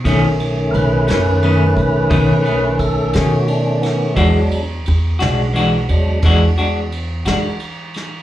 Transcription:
<<
  \new Staff \with { instrumentName = "Tonewheel organ" } { \time 12/8 \key b \mixolydian \tempo 4. = 58 r4 <ais' b'>2. a'8 fis'8 d'8 b8 | r1. | }
  \new Staff \with { instrumentName = "Tonewheel organ" } { \clef bass \time 12/8 \key b \mixolydian <dis a cis'>1. | <fis gis d'>8 r2 <fis gis d'>8 r2. | }
  \new Staff \with { instrumentName = "Clean electric guitar" } { \time 12/8 \key b \mixolydian <b, dis a cis'>8 r4 <dis a cis'>8 <b, dis a cis'>8 r8 <b, dis a cis'>8 <dis a cis'>8 r8 <dis a cis'>8 r4 | <e gis d' fis'>8 r4 <gis d' fis'>8 <e gis d' fis'>8 r8 <e gis d' fis'>8 <gis d' fis'>8 r8 <gis d' fis'>8 r4 | }
  \new Staff \with { instrumentName = "Upright bass" } { \clef bass \time 12/8 \key b \mixolydian b,,4 b,,8 fis,4 b,,8 b,,4. b,4. | e,4 e,8 b,,4 e,8 e,4. e4. | }
  \new DrumStaff \with { instrumentName = "Drums" } \drummode { \time 12/8 <bd cymr>8 cymr8 cymr8 <cymr sn>8 cymr8 <bd cymr>8 <bd cymr>8 cymr8 <bd cymr>8 <cymr sn>8 cymr8 <cymr sn>8 | <bd cymr>8 cymr8 cymr8 <cymr sn>8 cymr8 cymr8 <bd cymr>8 cymr8 cymr8 <cymr sn>8 cymr8 <cymr sn>8 | }
>>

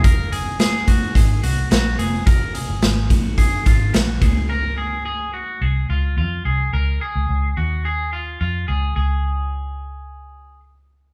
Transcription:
<<
  \new Staff \with { instrumentName = "Clean electric guitar" } { \time 4/4 \key ges \lydian \tempo 4 = 108 bes'8 aes'8 aes'8 ges'8 aes'8 ges'8 ges'8 aes'8 | bes'8 aes'4 ges'8 aes'8 f'8 ges'8 aes'8 | bes'8 aes'8 aes'8 ges'8 aes'8 f'8 f'8 aes'8 | bes'8 aes'4 ges'8 aes'8 f'8 f'8 aes'8 |
aes'2. r4 | }
  \new Staff \with { instrumentName = "Fingered electric bass" } { \clef bass \time 4/4 \key ges \lydian ges,,2 aes,,8 c,8 bes,,8 f,,8 | ges,,8 r16 ges,,16 aes,,8 bes,,8 ges,,8 aes,,8 bes,,8 des,8~ | des,2 c,8 des,8 f,8 c,8 | des,8 r16 des,16 des,8 ees,4. f,8 des,8 |
des,1 | }
  \new DrumStaff \with { instrumentName = "Drums" } \drummode { \time 4/4 <hh bd>8 hh8 <hh sn>8 <hh bd>8 <hh bd>8 hh8 <hh sn>8 hh8 | <hh bd>8 hh8 <hh sn>8 <hh bd>8 <hh bd>8 <hh bd>8 <hh sn>8 <hh bd>8 | r4 r4 r4 r4 | r4 r4 r4 r4 |
r4 r4 r4 r4 | }
>>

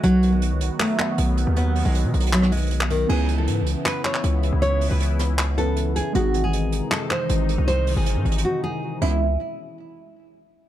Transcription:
<<
  \new Staff \with { instrumentName = "Nylon-string guitar" } { \time 4/4 \key cis \minor \tempo 4 = 157 fis8. gis4~ gis16 a8 b4. | b8. gis4~ gis16 fis8 gis4 dis8 | gis'8. a'4~ a'16 b'8 cis''4. | cis''8. b'4.~ b'16 a'4 gis'8 |
fis'8. gis'4~ gis'16 a'8 bis'4. | bis'8. gis'4~ gis'16 fis'8 gis'4 e'8 | r1 | }
  \new Staff \with { instrumentName = "Synth keys" } { \time 4/4 \key cis \minor r1 | r1 | <b cis' e' b'>1~ | <b cis' e' b'>2~ <b cis' e' b'>8 <b cis' e' b'>4. |
<gis bis dis' gis'>1~ | <gis bis dis' gis'>2.~ <gis bis dis' gis'>8 <gis b cis' e'>8 | r1 | }
  \new Staff \with { instrumentName = "Analog synth pad" } { \clef bass \time 4/4 \key cis \minor <dis fis b fis'>1~ | <dis fis b fis'>1 | <cis e b e'>1~ | <cis e b e'>1 |
<bis, dis dis'>1~ | <bis, dis dis'>2.~ <bis, dis dis'>8 <b, e gis cis'>8 | r1 | }
  \new Staff \with { instrumentName = "808-style bass" } { \clef bass \time 4/4 \key cis \minor b,,4~ b,,16 cis,16 b,,16 r4 r16 b,,8. dis,16~ | dis,8. b,,8 b,16 b,,2~ b,,8 | cis,4 gis,16. cis,16. r4 r16 cis,8. cis,16~ | cis,8. cis,2. r16 |
gis,,4~ gis,,16 a,,16 gis,,16 r4 r16 gis,,8. bis,,16~ | bis,,8. gis,,8 gis,16 gis,,8 r4. cis,8~ | cis,8 r2. r8 | }
  \new DrumStaff \with { instrumentName = "Drums" } \drummode { \time 4/4 hh8 hh8 hh8 hh8 <hc hh>8 hc8 hh8 hh8 | hh8 hho8 \tuplet 3/2 { hh16 r16 r16 hh16 hh16 hh16 } <hc hh>16 ss16 hh32 hh32 hh32 hh32 hh16 hc16 hh8 | cymc8 hh8 hh8 hh8 <hc hh>8 hc16 hc16 hh8 hh8 | hh8 hho8 hh8 <hh ss>8 <hc hh>8 hh8 hh8 hh8 |
hh8 hh8 hh8 hh8 <hc hh>8 hc8 hh8 hh8 | hh8 hho8 \tuplet 3/2 { hh16 r16 r16 hh16 hh16 hh16 } r4 r8 cymc8 | r4 r4 r4 r4 | }
>>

